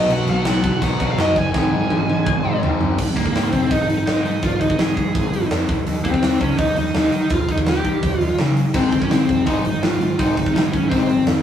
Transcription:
Already playing: overdriven electric guitar B2 F#3 B3, lead electric guitar D#5
0.09 picked electric bass B1, lead electric guitar F#5, crash
0.27 picked electric bass B1, lead electric guitar F#5, crash
0.43 picked electric bass B1, distorted electric guitar B2 F#3 B3, snare, crash
0.64 picked electric bass B1, kick, crash
0.80 picked electric bass B1, overdriven electric guitar B2 F#3 B3, lead electric guitar F#5, kick, crash
0.99 picked electric bass B1, overdriven electric guitar B2 F#3 B3, lead electric guitar F#5, kick, crash
1.11 lead electric guitar F5
1.17 picked electric bass F#2, lead electric guitar D#5, snare, crash
1.36 picked electric bass F#1, lead electric guitar G#5, kick, crash
1.53 picked electric bass G#1, overdriven electric guitar G#2 D#3 G#3, kick, snare
1.72 picked electric bass G#1
1.90 picked electric bass G#1, high tom
2.09 picked electric bass G#1, distorted electric guitar G#2 D#3 G#3, high tom
2.26 picked electric bass G#1, kick, mid tom
2.43 picked electric bass G#1, overdriven electric guitar G#2 D#3 G#3
2.62 picked electric bass D#2, overdriven electric guitar G#2 D#3 G#3, floor tom
2.81 picked electric bass F#2, floor tom
2.98 picked electric bass G#1, kick, crash
3.16 picked electric bass G#1, lead electric guitar A#3, kick, open hi-hat
3.26 kick
3.33 picked electric bass G#1, snare, open hi-hat
3.52 picked electric bass F1, lead electric guitar C4, kick, open hi-hat
3.71 picked electric bass G#1, lead electric guitar D#4, kick, open hi-hat
3.87 picked electric bass G#1, lead electric guitar D#4, open hi-hat
4.06 picked electric bass G#1, lead electric guitar D#4, snare, open hi-hat
4.24 picked electric bass G#2, lead electric guitar D#4, open hi-hat
4.42 picked electric bass G#1, lead electric guitar F4, kick, open hi-hat
4.61 picked electric bass G#1, lead electric guitar D#4, kick, open hi-hat
4.70 kick
4.78 picked electric bass G#1, lead electric guitar G#4, snare, open hi-hat
4.97 picked electric bass G#2, kick, open hi-hat
5.15 picked electric bass G#1, kick, open hi-hat
5.33 picked electric bass G#1, open hi-hat
5.50 picked electric bass F2, snare, open hi-hat
5.69 picked electric bass D#2, kick, open hi-hat
5.87 picked electric bass D#2, open hi-hat
6.04 picked electric bass D#2, lead electric guitar C4, kick, open hi-hat
6.14 kick
6.23 picked electric bass D#2, snare, open hi-hat
6.41 picked electric bass C#2, lead electric guitar C#4, kick, open hi-hat
6.58 picked electric bass D#2, lead electric guitar D#4, kick, open hi-hat
6.76 picked electric bass D#2, lead electric guitar D#4, open hi-hat
6.94 picked electric bass D#2, lead electric guitar D#4, snare, open hi-hat
7.12 picked electric bass D#3, open hi-hat
7.30 picked electric bass D#2, lead electric guitar F4, kick, open hi-hat
7.49 picked electric bass D#2, lead electric guitar D#4, kick, open hi-hat
7.58 kick
7.66 picked electric bass D#2, lead electric guitar G4, snare, open hi-hat
7.84 picked electric bass D#3, kick, open hi-hat
8.03 picked electric bass D#2, kick, open hi-hat
8.19 picked electric bass D#2, lead electric guitar F4, open hi-hat
8.38 picked electric bass C#3, snare, open hi-hat
8.57 open hi-hat
8.74 picked electric bass G#1, overdriven electric guitar G#2 D#3 G#3, lead electric guitar C4, kick, crash
8.92 picked electric bass G#1, overdriven electric guitar G#2 D#3, kick, open hi-hat
9.02 lead electric guitar C#4, kick
9.09 picked electric bass G#1, overdriven electric guitar G#2 D#3, lead electric guitar C4, snare, open hi-hat
9.28 picked electric bass F1, overdriven electric guitar G#2 D#3, kick, open hi-hat
9.46 picked electric bass G#1, overdriven electric guitar G#2 D#3 G#3, lead electric guitar D#4, kick, open hi-hat
9.64 picked electric bass G#1, overdriven electric guitar G#2 D#3, open hi-hat
9.82 picked electric bass G#1, overdriven electric guitar G#2 D#3, lead electric guitar F4, snare, open hi-hat
10.00 overdriven electric guitar G#2 D#3, picked electric bass G#2, open hi-hat
10.18 picked electric bass G#1, overdriven electric guitar G#2 D#3 G#3, lead electric guitar D#4, kick, open hi-hat
10.36 picked electric bass G#1, overdriven electric guitar G#2 D#3, kick, open hi-hat
10.46 kick
10.55 picked electric bass G#1, overdriven electric guitar G#2 D#3, snare, open hi-hat
10.72 overdriven electric guitar G#2 D#3, picked electric bass G#2, lead electric guitar C#4, kick, open hi-hat
10.89 picked electric bass G#1, overdriven electric guitar G#2 D#3 G#3, lead electric guitar C4, kick, open hi-hat
11.08 picked electric bass G#1, overdriven electric guitar G#2 D#3, open hi-hat
11.26 picked electric bass F2, overdriven electric guitar G#2 D#3, snare, open hi-hat

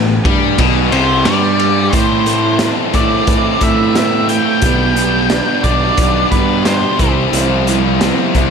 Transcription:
Already playing: picked electric bass A1, distorted electric guitar A2
0.25 picked electric bass G2, distorted electric guitar G3, kick, ride
0.58 picked electric bass B1, distorted electric guitar B2, kick, ride
0.92 picked electric bass C2, distorted electric guitar C3, lead electric guitar C5, ride
1.24 picked electric bass G2, distorted electric guitar G3, lead electric guitar D5, snare, ride
1.59 ride
1.90 steel-string acoustic guitar A2 A3 C4 E4, picked electric bass A2, distorted electric guitar E3, lead electric guitar C5, kick, closed hi-hat
1.94 steel-string acoustic guitar A4
2.26 overdriven electric guitar A3, steel-string acoustic guitar C4 E4 A4, closed hi-hat
2.59 steel-string acoustic guitar A2 A3 C4 E4 A4, snare, closed hi-hat
2.94 picked electric bass A2, distorted electric guitar A2 E3 A3, steel-string acoustic guitar C4 E4 A4, lead electric guitar D5, kick, closed hi-hat
3.27 picked electric bass A2, steel-string acoustic guitar A3 C4 E4 A4, kick, closed hi-hat
3.61 picked electric bass A2, overdriven electric guitar A3, steel-string acoustic guitar C4 E4 A4, lead electric guitar E5, kick, closed hi-hat
3.95 steel-string acoustic guitar A2 A3 C4 E4 A4, lead electric guitar E5, snare, closed hi-hat
4.28 overdriven electric guitar A3, steel-string acoustic guitar E4 A4, lead electric guitar G5, closed hi-hat
4.33 steel-string acoustic guitar C4
4.62 picked electric bass B1, distorted electric guitar B2 G3, steel-string acoustic guitar B3 D4 G4 B4, kick, closed hi-hat
4.95 overdriven electric guitar B3, steel-string acoustic guitar G4 B4, closed hi-hat
5.30 steel-string acoustic guitar B3 D4 G4 B4, snare, closed hi-hat
5.64 picked electric bass B1, distorted electric guitar G3 B3, steel-string acoustic guitar D4 G4 B4, lead electric guitar D5, kick, closed hi-hat
5.68 distorted electric guitar B2
5.97 picked electric bass B1, steel-string acoustic guitar B3 D4 G4 B4, kick, closed hi-hat
6.31 picked electric bass G2, overdriven electric guitar B3, steel-string acoustic guitar G4 B4, lead electric guitar B4, kick, closed hi-hat
6.36 steel-string acoustic guitar D4
6.65 steel-string acoustic guitar D4 G4, lead electric guitar C5, snare, closed hi-hat
6.99 picked electric bass C2, distorted electric guitar C3, steel-string acoustic guitar G3 C4 E4 C5, kick, closed hi-hat
7.33 picked electric bass C2, steel-string acoustic guitar C3 E3 G3 C4 E4 C5, lead electric guitar A4, closed hi-hat
7.67 steel-string acoustic guitar G3 C4 E4 C5, lead electric guitar A4, closed hi-hat
8.01 steel-string acoustic guitar C3 E3 G3 C4 E4 C5, lead electric guitar A4, snare, closed hi-hat
8.35 picked electric bass C2, steel-string acoustic guitar G3 C4 E4 C5, lead electric guitar G4, kick, closed hi-hat

